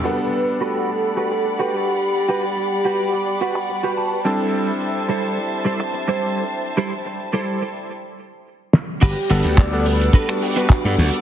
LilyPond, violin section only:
\new Staff \with { instrumentName = "Violin section" } { \time 4/4 \key g \major \tempo 4 = 107 << { <d'' fis'' b''>1~ | <d'' fis'' b''>2.~ <d'' fis'' b''>8 <c'' e'' a''>8~ | <c'' e'' a''>1~ | <c'' e'' a''>2 r2 |
<fis'' d'''>1 | } \\ { g1~ | g1~ | g1~ | g2 r2 |
b'1 | } >> }